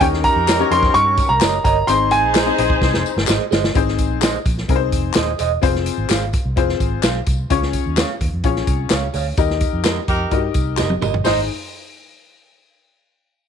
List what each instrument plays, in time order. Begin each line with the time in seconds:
0.00 fingered electric bass D#2, upright piano C#4 D#4 G4 A#4 C#5, horn section D#4 G4 A#4, vibraphone G4, grand piano G5, kick, closed hi-hat, tambourine
0.14 snare
0.22 vibraphone A#4, grand piano A#5, kick, closed hi-hat, tambourine
0.36 fingered electric bass F2
0.48 clean electric guitar G4 C#5 D#5, snare, clap, closed hi-hat, tambourine
0.59 upright piano C#4 D#4 G4 A#4 C#5
0.70 fingered electric bass F2, upright piano C#4 D#4 G4 A#4 C#5, vibraphone C5, grand piano C6, closed hi-hat
0.83 kick, snare
0.93 fingered electric bass G2, vibraphone C#5, grand piano C#6, closed hi-hat
1.17 kick, closed hi-hat, tambourine
1.28 fingered electric bass C2, vibraphone A#4, grand piano A#5
1.41 fingered electric bass F#1, clean electric guitar G4 C#5 D#5, snare, clap, closed hi-hat, tambourine
1.63 fingered electric bass G1, clean electric guitar G4 C#5 D#5, vibraphone A#4, grand piano A#5, kick, closed hi-hat, tambourine
1.87 fingered electric bass G#1, upright piano C4 D#4 G#4 C5 D#5, horn section D#4 G#4 C5, vibraphone C5, grand piano C6, closed hi-hat, tambourine
2.11 vibraphone G#4, grand piano G#5, closed hi-hat, tambourine
2.24 fingered electric bass A#1
2.35 clean electric guitar G#4 C5 D#5, snare, clap, closed hi-hat, tambourine
2.46 upright piano C4 D#4 G#4 C5 D#5
2.57 fingered electric bass A#1, upright piano C4 D#4 G#4 C5 D#5, closed hi-hat
2.70 kick
2.82 fingered electric bass C2, kick, snare, tambourine
2.94 fingered electric bass F1, snare
3.06 tambourine
3.16 fingered electric bass G1, snare
3.27 fingered electric bass G#1, clean electric guitar G#4 C5 D#5, snare, clap, tambourine
3.51 fingered electric bass G1, clean electric guitar G#4 C5 D#5, snare, tambourine
3.64 snare
3.75 fingered electric bass G#1, upright piano C4 D#4 G#4 C5, kick, closed hi-hat, tambourine
3.88 snare
3.98 kick, closed hi-hat, tambourine
4.11 fingered electric bass A#1
4.21 clean electric guitar G#4 C5 D#5, snare, clap, closed hi-hat, tambourine
4.45 fingered electric bass A#1, kick, closed hi-hat, tambourine
4.58 snare
4.68 fingered electric bass C2, upright piano C4 D#4 G#4 A#4, kick, closed hi-hat, tambourine
4.76 upright piano C5
4.92 fingered electric bass F1, kick, closed hi-hat, tambourine
5.14 fingered electric bass D#1, clean electric guitar G#4 C5 D#5, snare, clap, closed hi-hat, tambourine
5.39 fingered electric bass E1, clean electric guitar G#4 C5 D#5, closed hi-hat, tambourine
5.62 fingered electric bass F1, upright piano C4 F4 G#4 C5, kick, closed hi-hat, tambourine
5.76 snare
5.86 closed hi-hat, tambourine
5.98 fingered electric bass G#1
6.09 fingered electric bass G#1, clean electric guitar G#4 C5 F5, snare, clap, closed hi-hat, tambourine
6.33 kick, closed hi-hat, tambourine
6.45 fingered electric bass C2
6.56 fingered electric bass F1, upright piano C4 F4 G#4 C5, kick, closed hi-hat, tambourine
6.69 snare
6.80 fingered electric bass G#1, kick, closed hi-hat, tambourine
7.03 fingered electric bass B1, clean electric guitar G#4 C5 F5, snare, clap, closed hi-hat, tambourine
7.26 fingered electric bass C2, kick, closed hi-hat, tambourine
7.50 fingered electric bass C#2, upright piano C#4 F4 G#4 C#5, kick, closed hi-hat, tambourine
7.62 snare
7.73 kick, closed hi-hat, tambourine
7.86 fingered electric bass D#2
7.97 clean electric guitar G#4 C#5 F5, snare, clap, closed hi-hat, tambourine
8.21 fingered electric bass D#2, kick, closed hi-hat
8.33 fingered electric bass F2
8.44 fingered electric bass A#1, upright piano C#4 F4 G#4 C#5, kick, closed hi-hat
8.56 snare
8.67 fingered electric bass C2, kick, closed hi-hat, tambourine
8.90 fingered electric bass C#2, clean electric guitar G#4 C#5 F5, snare, clap, closed hi-hat, tambourine
9.14 fingered electric bass D2, clean electric guitar G#4 C#5 F5, open hi-hat, tambourine
9.37 fingered electric bass D#2, upright piano D#4 G4 A#4 D#5, kick, closed hi-hat, tambourine
9.50 snare
9.60 kick, closed hi-hat, tambourine
9.73 fingered electric bass F2
9.84 clean electric guitar G4 A#4 D#5, snare, clap, closed hi-hat, tambourine
10.08 fingered electric bass F2, horn section D#4 G4 A#4, kick, closed hi-hat, tambourine
10.31 fingered electric bass G2, upright piano D#4 F#4 A#4 D#5, kick, closed hi-hat, tambourine
10.37 upright piano G4
10.54 fingered electric bass C2, kick, closed hi-hat, tambourine
10.77 fingered electric bass F#1, clean electric guitar G4 A#4 D#5, snare, clap, tambourine
10.90 high tom
11.01 fingered electric bass G1, clean electric guitar G4 A#4 D#5, mid tom, tambourine
11.14 floor tom
11.25 fingered electric bass G#1, horn section G#3 D#4 C5, upright piano D#4 G#4 C5 D#5, clean electric guitar G#4 C5 D#5, snare, open hi-hat, tambourine